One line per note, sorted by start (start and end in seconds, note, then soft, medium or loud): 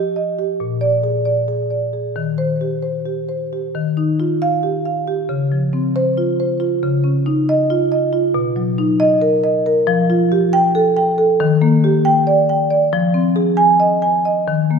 0.00 0.55 F3 medium
0.00 0.29 G4 medium
0.16 0.51 D#5 medium
0.39 0.60 G4 medium
0.60 2.11 A#2 medium
0.81 1.16 D5 medium
1.03 1.39 G#4 soft
1.25 1.61 D5 soft
1.48 1.84 G#4 soft
1.70 2.06 D5 soft
1.93 2.16 G#4 soft
2.16 3.71 D#3 medium
2.38 2.75 C5 medium
2.61 2.97 G4 soft
2.83 3.19 C5 soft
3.06 3.42 G4 soft
3.29 3.66 C5 soft
3.53 3.75 G4 soft
3.75 5.25 D#3 medium
3.97 4.33 D#4 soft
4.20 4.55 F4 medium
4.42 4.77 F5 medium
4.63 4.98 G4 medium
4.85 5.21 F5 soft
5.07 5.29 G4 medium
5.29 6.78 C#3 medium
5.52 5.86 F3 soft
5.73 6.08 C4 medium
5.96 6.30 C5 medium
6.18 6.52 F4 medium
6.40 6.74 C5 medium
6.60 6.82 F4 medium
6.83 8.32 C#3 medium
7.04 7.39 C#4 soft
7.26 7.61 D#4 medium
7.49 7.84 D#5 medium
7.70 8.05 F4 medium
7.92 8.27 D#5 medium
8.13 8.35 F4 medium
8.34 9.83 B2 medium
8.56 8.91 F#3 medium
8.78 9.13 D#4 medium
9.00 9.35 D#5 medium
9.21 9.56 A#4 medium
9.44 9.78 D#5 medium
9.66 9.88 A#4 medium
9.87 11.35 F3 medium
10.10 10.44 F4 medium
10.32 10.66 G4 medium
10.53 10.87 G5 loud
10.75 11.09 A4 medium
10.97 11.31 G5 medium
11.18 11.40 A4 medium
11.40 12.88 D#3 medium
11.62 11.96 A#3 medium
11.84 12.18 G4 medium
12.05 12.40 G5 medium
12.27 12.62 D5 medium
12.49 12.84 G5 medium
12.71 12.92 D5 medium
12.93 14.43 F3 medium
13.14 13.49 C4 medium
13.36 13.71 G#4 medium
13.57 13.92 G#5 medium
13.80 14.15 D#5 medium
14.02 14.38 G#5 medium
14.25 14.48 D#5 medium
14.48 14.79 D#3 medium
14.71 14.79 A#3 soft